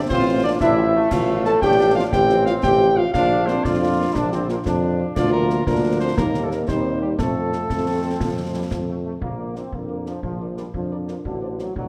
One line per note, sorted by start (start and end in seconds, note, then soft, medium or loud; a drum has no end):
0.09 0.52 A1 medium
0.09 0.42 C4 loud
0.09 0.57 F4 loud
0.09 0.41 C5 loud
0.09 concert bass drum medium
0.09 snare medium
0.26 0.32 F3 medium
0.26 0.32 C4 medium
0.26 0.32 F4 medium
0.43 0.49 F3 medium
0.43 0.49 C4 medium
0.43 0.52 D4 loud
0.43 0.49 F4 medium
0.43 0.51 D5 loud
0.60 1.03 A1 loud
0.60 0.76 D4 loud
0.60 1.08 E4 loud
0.60 1.13 E5 loud
0.60 concert bass drum medium
0.60 snare medium
0.77 0.83 F3 medium
0.77 0.83 C4 medium
0.77 0.94 C4 medium
0.77 0.83 F4 medium
0.94 1.00 F3 medium
0.94 1.58 A3 loud
0.94 1.00 C4 medium
0.94 1.00 F4 medium
1.11 1.53 A1 medium
1.11 1.43 F4 medium
1.11 1.44 F5 loud
1.11 concert bass drum medium
1.11 snare medium
1.11 crash medium
1.28 1.34 F3 medium
1.28 1.34 C4 medium
1.28 1.34 F4 medium
1.44 1.51 F3 medium
1.44 1.50 C4 medium
1.44 1.51 F4 medium
1.44 1.61 A4 loud
1.44 1.53 A5 loud
1.44 snare medium
1.62 2.04 A1 loud
1.62 2.09 D4 loud
1.62 1.94 G4 loud
1.62 1.93 G5 loud
1.62 concert bass drum medium
1.62 snare medium
1.78 1.85 F3 medium
1.78 1.85 C4 medium
1.78 1.85 F4 medium
1.95 2.02 F3 medium
1.95 2.02 C4 medium
1.95 2.02 F4 medium
1.95 2.04 F4 loud
1.95 2.03 F5 loud
2.12 2.54 A1 loud
2.12 2.97 C4 medium
2.12 2.44 G4 loud
2.12 2.44 G5 loud
2.12 concert bass drum medium
2.12 snare medium
2.29 2.36 F3 medium
2.29 2.36 C4 medium
2.29 2.36 F4 medium
2.29 snare medium
2.45 2.52 F3 medium
2.45 2.52 C4 medium
2.45 2.52 F4 medium
2.45 2.55 F4 loud
2.45 2.53 F5 loud
2.45 snare medium
2.63 3.05 A1 loud
2.63 2.99 G4 loud
2.63 2.98 G5 loud
2.63 concert bass drum medium
2.63 snare medium
2.80 2.86 F3 medium
2.80 2.86 C4 medium
2.80 2.86 F4 medium
2.97 3.03 F3 medium
2.97 3.03 C4 medium
2.97 3.03 F4 medium
2.97 3.14 F4 loud
2.97 3.13 F5 loud
3.13 3.56 A#1 loud
3.13 3.61 D4 loud
3.13 3.50 F4 loud
3.13 3.48 F5 loud
3.13 concert bass drum medium
3.13 snare medium
3.30 3.37 F3 medium
3.30 3.37 A#3 medium
3.30 3.37 F4 medium
3.46 3.54 F3 medium
3.46 3.54 A#3 medium
3.46 3.66 C4 loud
3.46 3.54 F4 medium
3.46 3.65 C5 loud
3.46 snare medium
3.64 4.07 F2 loud
3.64 4.66 D4 medium
3.64 4.15 F4 loud
3.64 4.65 D5 medium
3.64 concert bass drum medium
3.64 snare medium
3.81 3.87 F3 medium
3.81 3.87 A#3 medium
3.81 3.87 F4 medium
3.98 4.04 F3 medium
3.98 4.05 A#3 medium
3.98 4.05 F4 medium
4.15 4.57 A#1 medium
4.15 4.32 D4 loud
4.15 concert bass drum medium
4.15 snare medium
4.31 4.38 F3 medium
4.31 4.38 A#3 medium
4.31 4.47 C4 medium
4.31 4.38 F4 medium
4.31 snare medium
4.49 4.55 F3 medium
4.49 4.56 A#3 medium
4.49 4.55 A#3 medium
4.49 4.55 F4 medium
4.49 snare medium
4.65 5.03 F2 medium
4.65 5.12 D4 medium
4.65 concert bass drum medium
4.65 snare medium
4.82 4.88 F3 medium
4.82 4.88 A#3 medium
4.82 4.88 F4 medium
4.99 5.05 F3 medium
4.99 5.05 A#3 medium
4.99 5.06 F4 medium
5.15 5.61 D2 medium
5.15 5.64 F3 medium
5.15 5.63 A#3 medium
5.15 5.24 D4 loud
5.15 5.64 F4 medium
5.15 5.31 D5 loud
5.15 concert bass drum medium
5.15 snare medium
5.15 crash soft
5.32 5.65 A#3 medium
5.32 5.64 A#4 loud
5.50 snare medium
5.67 6.11 D2 medium
5.67 6.14 F3 medium
5.67 6.14 A#3 medium
5.67 5.98 A#3 medium
5.67 6.18 D4 medium
5.67 6.14 F4 medium
5.67 5.98 A#4 loud
5.67 concert bass drum medium
5.67 snare medium
6.00 6.09 C4 medium
6.00 6.16 C5 loud
6.17 6.62 D#2 medium
6.17 6.67 G3 medium
6.17 6.29 A#3 medium
6.17 6.65 A#3 medium
6.17 6.67 C4 medium
6.17 6.67 D#4 medium
6.17 6.45 A#4 loud
6.17 concert bass drum medium
6.17 snare medium
6.34 snare medium
6.43 6.50 A3 medium
6.43 6.51 A4 medium
6.51 6.70 A#3 medium
6.51 6.59 A#4 medium
6.51 snare medium
6.67 7.13 D#2 medium
6.67 7.19 G3 medium
6.67 7.15 G3 medium
6.67 7.15 C4 medium
6.67 7.02 C4 medium
6.67 7.15 D#4 medium
6.67 6.99 C5 medium
6.67 concert bass drum medium
6.67 snare medium
7.02 7.18 G3 medium
7.02 7.09 G4 medium
7.18 7.63 F2 medium
7.18 9.05 F3 medium
7.18 7.63 A3 medium
7.18 9.01 A3 medium
7.18 9.05 C4 medium
7.18 9.01 A4 loud
7.18 concert bass drum medium
7.18 snare medium
7.53 snare soft
7.70 8.14 F2 medium
7.70 8.02 A3 medium
7.70 concert bass drum medium
7.70 snare medium
8.03 8.19 C4 medium
8.20 8.65 F2 medium
8.20 8.52 F3 medium
8.20 concert bass drum medium
8.20 snare medium
8.54 8.62 G3 medium
8.71 9.15 F2 medium
8.71 8.79 F3 medium
8.71 concert bass drum medium
8.71 snare medium
8.88 8.95 A3 medium
9.05 9.12 A3 medium
9.21 9.64 A#1 soft
9.21 9.53 A#3 medium
9.21 concert bass drum medium
9.38 9.44 D4 soft
9.38 9.45 F4 soft
9.38 9.44 A#4 soft
9.38 9.44 D5 soft
9.55 9.72 C4 medium
9.55 9.61 D4 soft
9.55 9.61 F4 soft
9.55 9.61 A#4 soft
9.55 9.61 D5 soft
9.55 snare soft
9.72 10.15 F2 soft
9.72 10.07 A#3 medium
9.72 10.20 D4 soft
9.72 concert bass drum medium
9.89 9.96 D4 soft
9.89 9.95 F4 soft
9.89 9.96 A#4 soft
9.89 9.95 D5 soft
10.06 10.22 F3 medium
10.06 10.13 D4 soft
10.06 10.13 F4 soft
10.06 10.13 A#4 soft
10.06 10.12 D5 soft
10.06 snare soft
10.23 10.66 A#1 medium
10.23 10.55 F3 medium
10.23 10.71 F4 medium
10.23 concert bass drum medium
10.40 10.46 D4 soft
10.40 10.46 F4 soft
10.40 10.47 A#4 soft
10.40 10.46 D5 soft
10.57 10.64 G3 medium
10.57 10.63 D4 soft
10.57 10.63 F4 soft
10.57 10.63 A#4 soft
10.57 10.63 D5 soft
10.57 snare soft
10.74 11.13 F2 medium
10.74 11.05 F3 medium
10.74 11.22 D4 medium
10.74 concert bass drum medium
10.91 10.98 D4 soft
10.91 10.98 F4 soft
10.91 10.97 A#4 soft
10.91 10.97 D5 soft
11.07 11.16 F3 medium
11.07 11.14 D4 soft
11.07 11.14 F4 soft
11.07 11.15 A#4 soft
11.07 11.13 D5 soft
11.07 snare soft
11.24 11.68 A1 medium
11.24 11.56 D3 medium
11.24 11.73 F#4 medium
11.24 concert bass drum medium
11.41 11.49 D4 soft
11.41 11.49 F#4 soft
11.41 11.49 C5 soft
11.41 11.47 D5 soft
11.59 11.74 F#3 medium
11.59 11.65 D4 soft
11.59 11.65 F#4 soft
11.59 11.65 C5 soft
11.59 11.65 D5 soft
11.59 snare soft
11.75 11.88 A1 medium
11.75 11.88 F#3 medium
11.75 11.88 D4 medium
11.75 concert bass drum medium